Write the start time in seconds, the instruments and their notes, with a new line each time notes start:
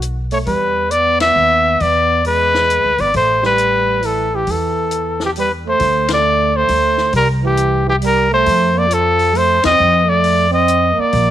Already playing: upright bass B1
0.02 closed hi-hat
0.31 trombone A3, trumpet C#5, open hi-hat
0.47 upright bass E2, trombone G3, trumpet B4, kick, open hi-hat
0.91 trombone B3, trumpet D5, closed hi-hat
1.20 trombone B3, trumpet E5, snare, ride
1.36 upright bass D#2
1.80 upright bass E2, trombone B3, trumpet D5, kick, open hi-hat
2.25 trombone G#3, trumpet B4, open hi-hat
2.55 snare
2.70 closed hi-hat
2.84 upright bass D2
2.98 upright bass G#1, trombone B3, trumpet D5, open hi-hat
3.14 upright bass A1, trombone A3, trumpet C5, kick, open hi-hat
3.42 trombone G3, trumpet B4, snare
3.58 closed hi-hat
4.03 trombone E3, trumpet A4, open hi-hat
4.31 trombone E3
4.36 trumpet G4
4.47 upright bass E2, trombone E3, kick, open hi-hat
4.51 trumpet A4
4.91 closed hi-hat
5.20 trombone E3, snare
5.25 trumpet G4
5.36 trombone G3, open hi-hat
5.40 trumpet B4
5.66 trombone A3, trumpet C5
5.80 upright bass D2, kick, open hi-hat
6.08 trombone A3, snare, ride
6.13 trumpet D5
6.55 trombone A3, trumpet C5
6.69 upright bass D2, open hi-hat
6.98 snare
7.13 upright bass C2, trombone G3, trumpet A#4, kick, open hi-hat
7.43 trombone E3, trumpet G4
7.57 closed hi-hat
7.87 trombone E3, trumpet G4
8.02 trombone G3, open hi-hat
8.06 trumpet A#4
8.31 trombone A3, trumpet C5
8.46 upright bass F2, kick, open hi-hat
8.74 trombone A#3
8.78 trumpet D5
8.88 trombone F3, closed hi-hat
8.94 trumpet A4
9.19 open hi-hat
9.33 trombone A3, trumpet C5, open hi-hat
9.63 upright bass E2, trombone C4, trumpet D#5, snare, ride
9.80 upright bass F2
10.07 trombone A3, trumpet D5
10.24 open hi-hat
10.50 trombone C4, trumpet D#5
10.68 closed hi-hat
10.94 trombone A#3, muted upright bass stroke
11.00 trumpet D5
11.13 upright bass A#1, kick, open hi-hat